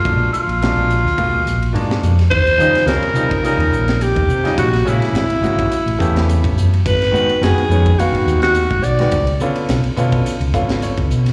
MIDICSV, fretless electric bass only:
0, 0, Header, 1, 3, 480
1, 0, Start_track
1, 0, Tempo, 567108
1, 35, Time_signature, 4, 2, 24, 8
1, 9588, End_track
2, 0, Start_track
2, 0, Title_t, "Fretless electric bass"
2, 0, Program_c, 0, 35
2, 42, Note_on_c, 0, 34, 84
2, 254, Note_off_c, 0, 34, 0
2, 400, Note_on_c, 0, 34, 76
2, 617, Note_off_c, 0, 34, 0
2, 647, Note_on_c, 0, 34, 70
2, 861, Note_off_c, 0, 34, 0
2, 881, Note_on_c, 0, 38, 65
2, 1098, Note_off_c, 0, 38, 0
2, 1232, Note_on_c, 0, 34, 74
2, 1449, Note_off_c, 0, 34, 0
2, 1469, Note_on_c, 0, 44, 72
2, 1688, Note_off_c, 0, 44, 0
2, 1711, Note_on_c, 0, 41, 68
2, 1930, Note_off_c, 0, 41, 0
2, 1955, Note_on_c, 0, 39, 94
2, 2171, Note_off_c, 0, 39, 0
2, 2186, Note_on_c, 0, 51, 76
2, 2307, Note_off_c, 0, 51, 0
2, 2421, Note_on_c, 0, 37, 100
2, 2544, Note_off_c, 0, 37, 0
2, 2656, Note_on_c, 0, 48, 90
2, 2880, Note_off_c, 0, 48, 0
2, 3026, Note_on_c, 0, 39, 80
2, 3131, Note_off_c, 0, 39, 0
2, 3136, Note_on_c, 0, 34, 73
2, 3477, Note_off_c, 0, 34, 0
2, 3518, Note_on_c, 0, 39, 83
2, 3619, Note_off_c, 0, 39, 0
2, 3624, Note_on_c, 0, 48, 78
2, 3845, Note_off_c, 0, 48, 0
2, 3871, Note_on_c, 0, 34, 88
2, 4089, Note_off_c, 0, 34, 0
2, 4100, Note_on_c, 0, 46, 78
2, 4224, Note_off_c, 0, 46, 0
2, 4339, Note_on_c, 0, 32, 97
2, 4464, Note_off_c, 0, 32, 0
2, 4580, Note_on_c, 0, 32, 89
2, 4803, Note_off_c, 0, 32, 0
2, 4959, Note_on_c, 0, 33, 80
2, 5062, Note_off_c, 0, 33, 0
2, 5080, Note_on_c, 0, 40, 80
2, 5410, Note_off_c, 0, 40, 0
2, 5448, Note_on_c, 0, 33, 80
2, 5546, Note_off_c, 0, 33, 0
2, 5553, Note_on_c, 0, 42, 77
2, 5770, Note_off_c, 0, 42, 0
2, 5801, Note_on_c, 0, 32, 95
2, 6014, Note_off_c, 0, 32, 0
2, 6033, Note_on_c, 0, 44, 83
2, 6151, Note_off_c, 0, 44, 0
2, 6273, Note_on_c, 0, 30, 96
2, 6391, Note_off_c, 0, 30, 0
2, 6506, Note_on_c, 0, 41, 87
2, 6726, Note_off_c, 0, 41, 0
2, 6875, Note_on_c, 0, 32, 83
2, 6979, Note_off_c, 0, 32, 0
2, 6984, Note_on_c, 0, 39, 80
2, 7321, Note_off_c, 0, 39, 0
2, 7367, Note_on_c, 0, 32, 79
2, 7461, Note_off_c, 0, 32, 0
2, 7466, Note_on_c, 0, 35, 86
2, 7686, Note_off_c, 0, 35, 0
2, 7717, Note_on_c, 0, 37, 98
2, 7932, Note_off_c, 0, 37, 0
2, 7955, Note_on_c, 0, 49, 82
2, 8072, Note_off_c, 0, 49, 0
2, 8200, Note_on_c, 0, 35, 94
2, 8315, Note_off_c, 0, 35, 0
2, 8439, Note_on_c, 0, 47, 87
2, 8653, Note_off_c, 0, 47, 0
2, 8804, Note_on_c, 0, 37, 80
2, 8904, Note_off_c, 0, 37, 0
2, 8921, Note_on_c, 0, 32, 78
2, 9250, Note_off_c, 0, 32, 0
2, 9287, Note_on_c, 0, 37, 76
2, 9385, Note_off_c, 0, 37, 0
2, 9402, Note_on_c, 0, 47, 76
2, 9588, Note_off_c, 0, 47, 0
2, 9588, End_track
3, 0, Start_track
3, 0, Title_t, "Muted fretless electric bass strokes"
3, 2313, Note_on_c, 9, 29, 33
3, 2397, Note_off_c, 9, 29, 0
3, 2898, Note_on_c, 9, 29, 34
3, 2983, Note_off_c, 9, 29, 0
3, 4230, Note_on_c, 9, 29, 33
3, 4315, Note_off_c, 9, 29, 0
3, 4476, Note_on_c, 9, 29, 36
3, 4561, Note_off_c, 9, 29, 0
3, 6165, Note_on_c, 9, 29, 34
3, 6250, Note_off_c, 9, 29, 0
3, 6748, Note_on_c, 9, 29, 37
3, 6833, Note_off_c, 9, 29, 0
3, 8085, Note_on_c, 9, 29, 35
3, 8170, Note_off_c, 9, 29, 0
3, 8329, Note_on_c, 9, 29, 35
3, 8413, Note_off_c, 9, 29, 0
3, 8678, Note_on_c, 9, 29, 33
3, 8763, Note_off_c, 9, 29, 0
3, 9588, End_track
0, 0, End_of_file